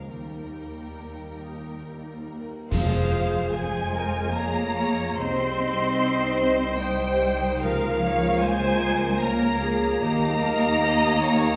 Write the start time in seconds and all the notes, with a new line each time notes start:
Already playing: C#3 F3 A#3 F4
0.08 D#2 D#3 G3 A#4 G5
0.54 G3
0.97 A#3
1.41 D#4
1.84 G4
2.28 A#3
2.71 F2 F3 G#3 F4 G#4 C5 F5, concert bass drum, crash
2.98 G#3
3.26 F4
3.52 G#3 G#4 C5 G#5
3.80 F4
3.95 A#4
4.08 F5
4.35 A#3 G#4 C#5 G#5 A#5
4.63 G#4
4.77 C#5
4.90 F4
5.18 C2 C3 G3 C4 D#4 C5 D#5 C6
5.46 C4
5.73 G3
6.00 D#4
6.27 C5
6.54 G4
6.80 G3 C5 D#5 G5
7.07 C5
7.35 D#4
7.61 C#2 C#3 F3 A#4 F5
7.66 A#3 F4
7.89 C#4
8.03 C#5
8.16 F3
8.42 G#3 F4 C5 G#5
8.69 A#4
8.96 F4
9.22 A#3 A#4 C#5 F5 A#5
9.49 A#4
9.63 G#4
9.76 F4
10.01 D#2 D#3 A#3 G4 D#5 A#5
10.29 G3
10.43 A#4
10.55 D#4
10.82 G4 D#5
11.09 D#4
11.21 C#5
11.34 D#5